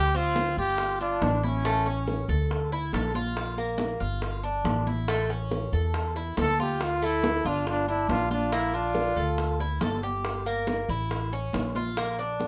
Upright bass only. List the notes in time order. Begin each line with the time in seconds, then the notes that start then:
Already playing: D2
0.57 G1
1.21 A1
2.28 D2
2.93 A#1
4.00 G1
4.64 A1
5.72 E2
6.37 D2
7.45 G1
8.08 A#1
9.16 D2
9.81 G1
10.89 A1
11.54 A#1